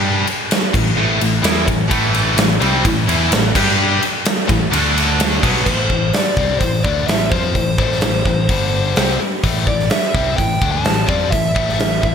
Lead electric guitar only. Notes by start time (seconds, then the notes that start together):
5.66 C5
6.13 D5
6.59 C5
6.83 D5
7.07 E5
7.30 C5
7.78 C5
9.68 D5
9.91 E5
10.15 E5
10.36 G5
10.72 A5
11.09 D5
11.31 E5